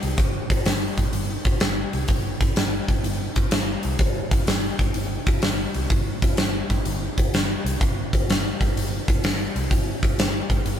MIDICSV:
0, 0, Header, 1, 3, 480
1, 0, Start_track
1, 0, Tempo, 476190
1, 185, Time_signature, 4, 2, 24, 8
1, 10882, End_track
2, 0, Start_track
2, 0, Title_t, "Picked electric bass"
2, 0, Program_c, 0, 34
2, 32, Note_on_c, 0, 36, 83
2, 136, Note_off_c, 0, 36, 0
2, 180, Note_on_c, 0, 31, 92
2, 399, Note_off_c, 0, 31, 0
2, 505, Note_on_c, 0, 31, 86
2, 612, Note_off_c, 0, 31, 0
2, 661, Note_on_c, 0, 31, 80
2, 880, Note_off_c, 0, 31, 0
2, 981, Note_on_c, 0, 31, 84
2, 1089, Note_off_c, 0, 31, 0
2, 1140, Note_on_c, 0, 31, 92
2, 1359, Note_off_c, 0, 31, 0
2, 1460, Note_on_c, 0, 31, 85
2, 1569, Note_off_c, 0, 31, 0
2, 1631, Note_on_c, 0, 31, 87
2, 1847, Note_off_c, 0, 31, 0
2, 1952, Note_on_c, 0, 36, 78
2, 2057, Note_off_c, 0, 36, 0
2, 2106, Note_on_c, 0, 31, 95
2, 2324, Note_off_c, 0, 31, 0
2, 2424, Note_on_c, 0, 31, 100
2, 2532, Note_off_c, 0, 31, 0
2, 2590, Note_on_c, 0, 31, 84
2, 2807, Note_off_c, 0, 31, 0
2, 2910, Note_on_c, 0, 31, 96
2, 3016, Note_off_c, 0, 31, 0
2, 3062, Note_on_c, 0, 31, 95
2, 3281, Note_off_c, 0, 31, 0
2, 3386, Note_on_c, 0, 31, 91
2, 3494, Note_off_c, 0, 31, 0
2, 3552, Note_on_c, 0, 31, 90
2, 3768, Note_off_c, 0, 31, 0
2, 3880, Note_on_c, 0, 36, 87
2, 3983, Note_off_c, 0, 36, 0
2, 4024, Note_on_c, 0, 31, 94
2, 4243, Note_off_c, 0, 31, 0
2, 4348, Note_on_c, 0, 31, 93
2, 4455, Note_off_c, 0, 31, 0
2, 4508, Note_on_c, 0, 31, 87
2, 4726, Note_off_c, 0, 31, 0
2, 4831, Note_on_c, 0, 31, 91
2, 4938, Note_off_c, 0, 31, 0
2, 4992, Note_on_c, 0, 31, 83
2, 5209, Note_off_c, 0, 31, 0
2, 5311, Note_on_c, 0, 31, 90
2, 5418, Note_off_c, 0, 31, 0
2, 5474, Note_on_c, 0, 31, 89
2, 5691, Note_off_c, 0, 31, 0
2, 5801, Note_on_c, 0, 36, 92
2, 5905, Note_off_c, 0, 36, 0
2, 5947, Note_on_c, 0, 31, 91
2, 6166, Note_off_c, 0, 31, 0
2, 6272, Note_on_c, 0, 31, 90
2, 6379, Note_off_c, 0, 31, 0
2, 6436, Note_on_c, 0, 31, 73
2, 6651, Note_off_c, 0, 31, 0
2, 6750, Note_on_c, 0, 31, 92
2, 6857, Note_off_c, 0, 31, 0
2, 6915, Note_on_c, 0, 31, 93
2, 7131, Note_off_c, 0, 31, 0
2, 7237, Note_on_c, 0, 31, 86
2, 7342, Note_off_c, 0, 31, 0
2, 7386, Note_on_c, 0, 31, 83
2, 7605, Note_off_c, 0, 31, 0
2, 7708, Note_on_c, 0, 36, 92
2, 7816, Note_off_c, 0, 36, 0
2, 7875, Note_on_c, 0, 31, 105
2, 8090, Note_off_c, 0, 31, 0
2, 8197, Note_on_c, 0, 31, 85
2, 8301, Note_off_c, 0, 31, 0
2, 8350, Note_on_c, 0, 31, 92
2, 8567, Note_off_c, 0, 31, 0
2, 8676, Note_on_c, 0, 31, 99
2, 8781, Note_off_c, 0, 31, 0
2, 8833, Note_on_c, 0, 31, 87
2, 9048, Note_off_c, 0, 31, 0
2, 9155, Note_on_c, 0, 31, 96
2, 9259, Note_off_c, 0, 31, 0
2, 9313, Note_on_c, 0, 31, 86
2, 9528, Note_off_c, 0, 31, 0
2, 9635, Note_on_c, 0, 36, 89
2, 9738, Note_off_c, 0, 36, 0
2, 9786, Note_on_c, 0, 31, 99
2, 10002, Note_off_c, 0, 31, 0
2, 10110, Note_on_c, 0, 31, 91
2, 10214, Note_off_c, 0, 31, 0
2, 10262, Note_on_c, 0, 31, 83
2, 10479, Note_off_c, 0, 31, 0
2, 10580, Note_on_c, 0, 31, 95
2, 10688, Note_off_c, 0, 31, 0
2, 10740, Note_on_c, 0, 31, 94
2, 10882, Note_off_c, 0, 31, 0
2, 10882, End_track
3, 0, Start_track
3, 0, Title_t, "Drums"
3, 26, Note_on_c, 9, 46, 59
3, 127, Note_off_c, 9, 46, 0
3, 180, Note_on_c, 9, 36, 100
3, 182, Note_on_c, 9, 46, 69
3, 281, Note_off_c, 9, 36, 0
3, 283, Note_off_c, 9, 46, 0
3, 504, Note_on_c, 9, 36, 89
3, 508, Note_on_c, 9, 46, 63
3, 605, Note_off_c, 9, 36, 0
3, 609, Note_off_c, 9, 46, 0
3, 659, Note_on_c, 9, 46, 81
3, 668, Note_on_c, 9, 38, 112
3, 760, Note_off_c, 9, 46, 0
3, 769, Note_off_c, 9, 38, 0
3, 983, Note_on_c, 9, 46, 51
3, 984, Note_on_c, 9, 36, 70
3, 1084, Note_off_c, 9, 46, 0
3, 1085, Note_off_c, 9, 36, 0
3, 1138, Note_on_c, 9, 46, 67
3, 1239, Note_off_c, 9, 46, 0
3, 1460, Note_on_c, 9, 46, 60
3, 1463, Note_on_c, 9, 36, 92
3, 1561, Note_off_c, 9, 46, 0
3, 1564, Note_off_c, 9, 36, 0
3, 1615, Note_on_c, 9, 46, 74
3, 1624, Note_on_c, 9, 38, 125
3, 1715, Note_off_c, 9, 46, 0
3, 1724, Note_off_c, 9, 38, 0
3, 1947, Note_on_c, 9, 46, 55
3, 2048, Note_off_c, 9, 46, 0
3, 2095, Note_on_c, 9, 46, 72
3, 2102, Note_on_c, 9, 36, 92
3, 2196, Note_off_c, 9, 46, 0
3, 2203, Note_off_c, 9, 36, 0
3, 2426, Note_on_c, 9, 36, 88
3, 2427, Note_on_c, 9, 46, 58
3, 2526, Note_off_c, 9, 36, 0
3, 2528, Note_off_c, 9, 46, 0
3, 2582, Note_on_c, 9, 46, 81
3, 2591, Note_on_c, 9, 38, 113
3, 2683, Note_off_c, 9, 46, 0
3, 2692, Note_off_c, 9, 38, 0
3, 2907, Note_on_c, 9, 36, 78
3, 2908, Note_on_c, 9, 46, 47
3, 3008, Note_off_c, 9, 36, 0
3, 3009, Note_off_c, 9, 46, 0
3, 3068, Note_on_c, 9, 46, 66
3, 3168, Note_off_c, 9, 46, 0
3, 3384, Note_on_c, 9, 46, 62
3, 3389, Note_on_c, 9, 36, 85
3, 3485, Note_off_c, 9, 46, 0
3, 3490, Note_off_c, 9, 36, 0
3, 3540, Note_on_c, 9, 46, 95
3, 3549, Note_on_c, 9, 38, 126
3, 3640, Note_off_c, 9, 46, 0
3, 3650, Note_off_c, 9, 38, 0
3, 3860, Note_on_c, 9, 46, 56
3, 3960, Note_off_c, 9, 46, 0
3, 4020, Note_on_c, 9, 46, 74
3, 4024, Note_on_c, 9, 36, 98
3, 4121, Note_off_c, 9, 46, 0
3, 4125, Note_off_c, 9, 36, 0
3, 4347, Note_on_c, 9, 46, 66
3, 4349, Note_on_c, 9, 36, 92
3, 4448, Note_off_c, 9, 46, 0
3, 4449, Note_off_c, 9, 36, 0
3, 4508, Note_on_c, 9, 46, 83
3, 4517, Note_on_c, 9, 38, 119
3, 4608, Note_off_c, 9, 46, 0
3, 4618, Note_off_c, 9, 38, 0
3, 4829, Note_on_c, 9, 46, 51
3, 4830, Note_on_c, 9, 36, 78
3, 4930, Note_off_c, 9, 46, 0
3, 4931, Note_off_c, 9, 36, 0
3, 4981, Note_on_c, 9, 46, 71
3, 5082, Note_off_c, 9, 46, 0
3, 5307, Note_on_c, 9, 46, 59
3, 5310, Note_on_c, 9, 36, 96
3, 5408, Note_off_c, 9, 46, 0
3, 5411, Note_off_c, 9, 36, 0
3, 5462, Note_on_c, 9, 46, 74
3, 5471, Note_on_c, 9, 38, 112
3, 5563, Note_off_c, 9, 46, 0
3, 5572, Note_off_c, 9, 38, 0
3, 5790, Note_on_c, 9, 46, 55
3, 5890, Note_off_c, 9, 46, 0
3, 5948, Note_on_c, 9, 46, 64
3, 5949, Note_on_c, 9, 36, 94
3, 6048, Note_off_c, 9, 46, 0
3, 6050, Note_off_c, 9, 36, 0
3, 6273, Note_on_c, 9, 36, 91
3, 6273, Note_on_c, 9, 46, 59
3, 6374, Note_off_c, 9, 36, 0
3, 6374, Note_off_c, 9, 46, 0
3, 6424, Note_on_c, 9, 46, 77
3, 6433, Note_on_c, 9, 38, 113
3, 6524, Note_off_c, 9, 46, 0
3, 6533, Note_off_c, 9, 38, 0
3, 6753, Note_on_c, 9, 36, 66
3, 6753, Note_on_c, 9, 46, 49
3, 6854, Note_off_c, 9, 36, 0
3, 6854, Note_off_c, 9, 46, 0
3, 6909, Note_on_c, 9, 46, 68
3, 7009, Note_off_c, 9, 46, 0
3, 7235, Note_on_c, 9, 36, 86
3, 7235, Note_on_c, 9, 46, 63
3, 7336, Note_off_c, 9, 36, 0
3, 7336, Note_off_c, 9, 46, 0
3, 7397, Note_on_c, 9, 46, 81
3, 7406, Note_on_c, 9, 38, 112
3, 7497, Note_off_c, 9, 46, 0
3, 7506, Note_off_c, 9, 38, 0
3, 7725, Note_on_c, 9, 46, 65
3, 7826, Note_off_c, 9, 46, 0
3, 7873, Note_on_c, 9, 36, 97
3, 7878, Note_on_c, 9, 46, 68
3, 7973, Note_off_c, 9, 36, 0
3, 7979, Note_off_c, 9, 46, 0
3, 8197, Note_on_c, 9, 36, 84
3, 8200, Note_on_c, 9, 46, 61
3, 8298, Note_off_c, 9, 36, 0
3, 8301, Note_off_c, 9, 46, 0
3, 8362, Note_on_c, 9, 46, 83
3, 8372, Note_on_c, 9, 38, 113
3, 8463, Note_off_c, 9, 46, 0
3, 8472, Note_off_c, 9, 38, 0
3, 8676, Note_on_c, 9, 36, 73
3, 8681, Note_on_c, 9, 46, 54
3, 8777, Note_off_c, 9, 36, 0
3, 8782, Note_off_c, 9, 46, 0
3, 8843, Note_on_c, 9, 46, 70
3, 8944, Note_off_c, 9, 46, 0
3, 9155, Note_on_c, 9, 36, 92
3, 9163, Note_on_c, 9, 46, 57
3, 9255, Note_off_c, 9, 36, 0
3, 9264, Note_off_c, 9, 46, 0
3, 9312, Note_on_c, 9, 46, 87
3, 9321, Note_on_c, 9, 38, 127
3, 9413, Note_off_c, 9, 46, 0
3, 9422, Note_off_c, 9, 38, 0
3, 9636, Note_on_c, 9, 46, 63
3, 9737, Note_off_c, 9, 46, 0
3, 9787, Note_on_c, 9, 36, 92
3, 9794, Note_on_c, 9, 46, 67
3, 9888, Note_off_c, 9, 36, 0
3, 9895, Note_off_c, 9, 46, 0
3, 10109, Note_on_c, 9, 36, 88
3, 10121, Note_on_c, 9, 46, 57
3, 10209, Note_off_c, 9, 36, 0
3, 10222, Note_off_c, 9, 46, 0
3, 10270, Note_on_c, 9, 46, 77
3, 10279, Note_on_c, 9, 38, 127
3, 10370, Note_off_c, 9, 46, 0
3, 10379, Note_off_c, 9, 38, 0
3, 10582, Note_on_c, 9, 36, 81
3, 10588, Note_on_c, 9, 46, 47
3, 10683, Note_off_c, 9, 36, 0
3, 10689, Note_off_c, 9, 46, 0
3, 10742, Note_on_c, 9, 46, 66
3, 10842, Note_off_c, 9, 46, 0
3, 10882, End_track
0, 0, End_of_file